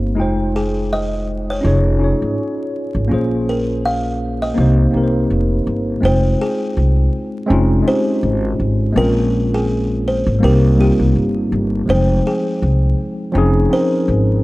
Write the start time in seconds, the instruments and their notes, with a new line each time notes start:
Already playing: upright bass G1, tine electric piano A#3 C4 D#4 G4 C5, kalimba D#5
0.15 upright bass F1, tine electric piano G#3 D#4 F4
0.20 tine electric piano C5 G5
0.56 kalimba G#4
0.93 kalimba D#5
1.50 kalimba C#5
1.61 upright bass F1, tine electric piano C#4 D#4 F4
1.66 tine electric piano G#4 C#5
1.98 tine electric piano C#4 D#4 F4
2.03 tine electric piano G#4 C#5
2.22 upright bass G#1
2.95 upright bass G#1
3.08 upright bass A#1, tine electric piano A#3 C#4 F4
3.13 tine electric piano G#4 C5
3.49 kalimba A#4
3.85 kalimba F5
4.42 kalimba D#5
4.54 upright bass C2, tine electric piano A#3 C4 D#4
4.59 tine electric piano G4 C5
4.91 upright bass C2, tine electric piano A#3 C4 D#4
4.95 tine electric piano G4 A#4
5.03 tine electric piano C5
5.30 upright bass F1
5.67 upright bass G1
6.00 upright bass F1, tine electric piano G#3 C4 D#4
6.05 tine electric piano F4 G5, kalimba C5
6.42 kalimba G#4
6.77 upright bass C2
7.46 upright bass F1, tine electric piano G#3 C4 C#4
7.51 tine electric piano D#4 F4
7.83 tine electric piano G#3 C4 C#4
7.87 tine electric piano D#4 G4, kalimba C5
8.23 upright bass G#1
8.60 upright bass G#1
8.92 upright bass A#1, tine electric piano G#3 A#3 C4
8.97 tine electric piano C#4 F4, kalimba A#4
9.54 kalimba G#4
10.08 kalimba C5
10.27 upright bass G#1
10.39 upright bass C2, tine electric piano G3 A#3 C4
10.44 tine electric piano D#4 G4, kalimba A#4
10.76 tine electric piano G3 A#3 C4
10.80 tine electric piano D#4 F4, kalimba G4
10.99 upright bass C2
11.16 upright bass G1
11.52 upright bass G1
11.86 upright bass F1, tine electric piano F3 G#3 C4
11.90 tine electric piano D#4 G5, kalimba C5
12.27 kalimba G#4
12.62 upright bass C2
13.32 upright bass F1, tine electric piano F3 C4 C#4
13.37 tine electric piano D#4 G#4
13.69 tine electric piano F3 C4 C#4
13.73 tine electric piano D#4 A#4, kalimba C5
14.08 upright bass G#1